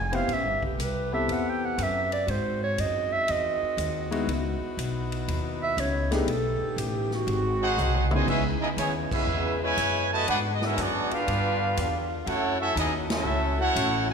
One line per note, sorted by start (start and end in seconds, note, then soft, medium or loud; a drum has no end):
0.00 0.27 F1 medium
0.00 0.17 G#5 loud
0.12 0.27 B3 medium
0.12 0.27 C4 medium
0.12 0.27 E4 medium
0.12 0.27 G4 medium
0.12 0.27 C5 medium
0.12 0.34 F5 medium
0.12 ride medium
0.26 0.44 A1 medium
0.26 2.25 C3 medium
0.26 2.25 A3 medium
0.26 2.25 G4 medium
0.26 2.25 B4 medium
0.26 ride medium
0.33 0.64 E5 medium
0.44 0.61 G1 medium
0.62 0.77 E1 medium
0.62 0.83 G4 medium
0.62 kick medium
0.79 1.27 C2 medium
0.79 1.14 B4 medium
0.79 hi-hat pedal medium
0.79 ride medium
1.12 1.75 B3 medium
1.12 1.76 C4 medium
1.12 1.76 E4 medium
1.12 1.76 G4 medium
1.12 1.76 A4 medium
1.12 1.34 E5 loud
1.28 1.77 E2 medium
1.28 ride medium
1.32 1.51 F#5 medium
1.49 1.67 G5 loud
1.65 1.84 F#5 medium
1.78 2.27 F#2 loud
1.78 hi-hat pedal medium
1.78 ride medium
1.83 2.12 E5 medium
2.12 2.32 D5 medium
2.12 ride medium
2.27 2.76 G#2 medium
2.27 4.26 D#3 medium
2.27 4.26 G#3 medium
2.27 4.25 C4 medium
2.27 6.23 F#4 medium
2.27 2.63 C5 medium
2.27 ride medium
2.63 2.81 C#5 loud
2.78 3.27 F#2 medium
2.78 3.14 D#5 loud
2.78 hi-hat pedal medium
2.78 ride medium
3.13 3.33 E5 loud
3.28 3.60 E2 medium
3.28 4.30 D#5 loud
3.28 ride medium
3.62 muted upright bass stroke soft
3.77 4.26 D#2 loud
3.77 hi-hat pedal medium
3.77 ride medium
4.11 4.26 G#3 medium
4.11 4.26 B3 medium
4.11 4.26 D#4 medium
4.11 4.26 E4 medium
4.11 4.27 F#4 medium
4.11 ride medium
4.27 4.59 C#2 medium
4.27 6.26 B3 medium
4.27 6.26 D#4 medium
4.27 6.26 E4 medium
4.27 ride medium
4.61 muted upright bass stroke soft
4.77 5.26 B1 medium
4.77 hi-hat pedal medium
4.77 ride medium
5.12 ride medium
5.28 5.76 D#2 medium
5.28 ride medium
5.63 5.81 E5 loud
5.77 6.26 C#2 loud
5.77 6.12 C#5 loud
5.77 hi-hat pedal medium
5.77 ride medium
6.11 6.26 A3 medium
6.11 6.26 B3 medium
6.11 6.26 D4 medium
6.11 6.26 D#4 medium
6.11 6.27 G4 medium
6.11 6.31 G#4 medium
6.11 snare medium
6.11 ride medium
6.26 6.58 B1 medium
6.26 8.10 D#3 medium
6.26 7.27 A3 medium
6.26 7.27 B3 medium
6.26 7.27 G4 medium
6.26 6.81 A4 loud
6.26 ride medium
6.61 muted upright bass stroke soft
6.76 7.25 A1 loud
6.76 7.16 G4 medium
6.76 hi-hat pedal medium
6.76 ride medium
7.11 8.21 F#4 loud
7.11 snare soft
7.27 7.76 G#1 loud
7.27 8.10 G#3 medium
7.27 8.10 C4 medium
7.27 8.10 F#4 medium
7.27 ride medium
7.60 8.07 C4 medium
7.60 8.07 D#4 medium
7.60 8.08 D#4 medium
7.60 8.07 F#4 medium
7.60 8.08 G#4 medium
7.60 8.09 C5 medium
7.60 8.08 F#5 loud
7.77 8.26 C2 loud
7.77 hi-hat pedal medium
7.77 mid tom medium
7.94 mid tom medium
8.09 8.26 C3 medium
8.09 8.27 D#3 medium
8.09 8.26 G#3 medium
8.09 8.26 B3 medium
8.09 8.26 C#4 medium
8.09 8.26 D#4 medium
8.09 8.26 E4 medium
8.09 mid tom loud
8.13 8.30 F#4 medium
8.13 8.27 G#4 medium
8.13 8.29 C5 medium
8.13 8.29 D#5 medium
8.13 8.29 G#5 loud
8.27 8.59 C#2 medium
8.27 10.25 C#3 medium
8.27 8.42 G#3 medium
8.27 10.25 G#3 medium
8.27 10.25 B3 medium
8.27 8.43 B3 medium
8.27 8.44 C#4 medium
8.27 10.25 E4 medium
8.27 8.42 E4 medium
8.27 8.44 G#4 medium
8.27 8.45 B4 medium
8.27 8.44 E5 loud
8.27 kick medium
8.27 crash medium
8.60 8.70 B3 medium
8.60 8.67 D#4 medium
8.60 8.69 E4 medium
8.60 8.69 G#4 medium
8.60 8.69 D#5 medium
8.60 muted upright bass stroke soft
8.77 9.08 D#2 loud
8.77 8.93 E3 medium
8.77 8.93 G#3 medium
8.77 8.94 B3 medium
8.77 8.93 C#4 medium
8.77 8.94 E4 medium
8.77 8.94 G#4 medium
8.77 8.94 C#5 medium
8.77 hi-hat pedal medium
8.77 ride medium
9.11 9.58 G#3 medium
9.11 9.58 B3 medium
9.11 9.58 C#4 medium
9.11 9.58 E4 medium
9.11 9.58 G#4 medium
9.11 9.58 B4 medium
9.11 9.59 E5 loud
9.11 muted upright bass stroke soft
9.11 kick loud
9.11 crash medium
9.27 9.76 E2 loud
9.61 10.07 B2 medium
9.61 10.07 E3 medium
9.61 10.07 G#3 medium
9.61 10.09 E4 loud
9.61 10.09 B4 loud
9.61 10.09 C#5 loud
9.61 10.09 G#5 loud
9.77 10.26 F#2 loud
9.77 hi-hat pedal medium
9.77 ride medium
10.11 10.27 A3 medium
10.11 10.29 F#4 loud
10.11 10.29 B4 loud
10.11 10.29 D#5 loud
10.11 10.29 A5 loud
10.27 10.76 G#2 medium
10.27 11.26 D3 medium
10.27 11.26 G#3 medium
10.27 10.38 B3 loud
10.27 12.24 B3 medium
10.27 10.38 D4 loud
10.27 10.41 D4 medium
10.27 11.26 F#4 medium
10.27 10.39 F#4 loud
10.27 10.40 G#4 medium
10.27 10.41 B4 loud
10.27 10.41 F#5 loud
10.27 ride medium
10.55 10.62 D#5 medium
10.61 10.79 C#4 medium
10.61 10.77 E4 medium
10.61 10.79 F#4 loud
10.61 10.79 A#4 medium
10.61 10.79 E5 loud
10.61 snare medium
10.76 11.08 F#2 medium
10.76 11.10 F#3 medium
10.76 11.10 B3 medium
10.76 11.09 D4 medium
10.76 hi-hat pedal medium
10.76 ride medium
10.82 11.13 B3 medium
10.82 11.13 F#4 medium
10.82 11.13 G#4 medium
10.82 11.13 D5 loud
11.11 12.10 B3 medium
11.11 12.10 D4 medium
11.11 12.11 D4 medium
11.11 12.10 F4 medium
11.11 12.12 G4 medium
11.11 12.12 B4 medium
11.11 12.12 F5 medium
11.11 muted upright bass stroke soft
11.11 ride medium
11.27 11.75 G2 loud
11.27 12.26 D3 medium
11.27 12.26 G3 medium
11.27 12.27 F4 medium
11.27 ride medium
11.77 12.25 E2 loud
11.77 hi-hat pedal medium
11.77 ride medium
12.24 12.75 F#2 loud
12.24 12.58 A3 loud
12.24 12.58 C#4 loud
12.24 14.13 C#4 medium
12.24 12.60 E4 loud
12.24 12.60 F#4 loud
12.24 12.61 A4 loud
12.24 12.60 C#5 medium
12.24 12.27 F5 medium
12.24 12.60 F#5 loud
12.24 ride medium
12.29 14.13 A3 medium
12.29 14.13 E4 medium
12.29 14.13 F#4 medium
12.59 12.75 A3 medium
12.59 12.75 C#4 medium
12.59 12.76 C#4 medium
12.59 12.75 E4 medium
12.59 12.76 F#4 loud
12.59 12.76 A4 medium
12.59 12.76 E5 loud
12.75 13.24 D#2 loud
12.75 12.90 D#4 medium
12.75 12.93 E4 medium
12.75 hi-hat pedal medium
12.75 ride medium
12.79 12.94 B3 medium
12.79 12.94 G#4 medium
12.79 12.93 D#5 medium
13.10 13.56 A3 medium
13.10 13.56 C#4 medium
13.10 13.58 C#4 medium
13.10 13.56 E4 medium
13.10 13.57 F#4 medium
13.10 13.57 A4 medium
13.10 13.58 E5 loud
13.10 snare loud
13.10 ride medium
13.25 13.74 C#2 medium
13.58 14.05 A3 medium
13.58 14.06 C#4 medium
13.58 14.07 E4 medium
13.58 14.05 F#4 medium
13.58 14.07 A4 loud
13.58 14.07 C#5 loud
13.58 14.06 F#5 loud
13.76 14.13 A1 loud
13.76 hi-hat pedal medium
13.76 ride loud
14.09 14.13 G#3 medium
14.09 14.13 G#5 loud